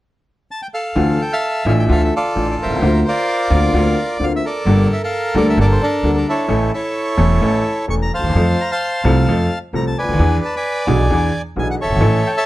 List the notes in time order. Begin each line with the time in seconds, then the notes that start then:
0.51 A5
0.62 G5
0.74 A4 F5
0.95 D2 D3 E3 A3 D4 F4
1.22 G5
1.33 E5 F5 A5
1.65 A1 A2 E3 A3 D4 F4 F5
1.80 G5
1.89 D2 D3 E3 A3 D4 F4 A4 F5
2.05 E5
2.16 F4 A4 D5
2.35 A1 A2 E3 A3 D4 F4
2.51 D5
2.62 B1 A#4 C5 E5
2.70 C2
2.76 C#2
2.81 D2 D3 A#3 C4 F4
3.08 F4 A#4 D5
3.50 D2 D3 A#3 C4 F4
3.73 D2 D3 A#3 C4 F4
4.19 D2 D3 A#3 C4 F4
4.24 F5
4.36 E5
4.45 A4 A#4 D5
4.65 G1 G2 G3 A#3 D4 A4
4.93 E5
5.04 A4 A#4 F5
5.35 D2 D3 G3 A#3 D4 A4 D5
5.50 E5
5.57 G1 G2 G3 A#3 D4 A4 A#4
5.62 D5
5.72 C5
5.82 D4 A#4
6.03 D2 D3 G3 A#3 D4 A4
6.18 A#4
6.28 E4 A4 C#5
6.48 A1 A2 E3 A3 C#4 A4
6.74 E4 A4 C#5
7.17 E1 E2 E3 A3 C#4 A4
7.41 A1 A2 E3 A3 C#4 A4
7.88 E1 E2 E3 A3 C#4 A4 C#6
8.02 A#5
8.14 D2 C5 F5 A5
8.18 D2
8.23 D#2
8.29 E2
8.34 F2 F3 A3 C4 A4
8.61 A#5
8.71 F5 A5 C6
9.04 C2 C3 F3 A3 C4 A4
9.27 F2 F3 A3 C4 A4
9.73 C2 C3 F3 A3 C4 A4 A#5
9.87 A5
9.98 C#2 B4 D5 G#5
10.02 C#2
10.08 D2
10.13 D#2
10.19 E2 E3 B3 D4 G#4
10.45 A5
10.56 D5 G#5 B5
10.87 B1 B2 E3 B3 D4 G#4
11.10 E2 E3 B3 D4 G#4
11.56 B1 B2 E3 B3 D4 G#4 G#5
11.71 F#5
11.81 F#1 A4 C#5 E5
11.89 G1
11.96 G#1
12.00 A1 A2 E3 A3 C#4 A4
12.27 G5
12.37 C#5 E5 A5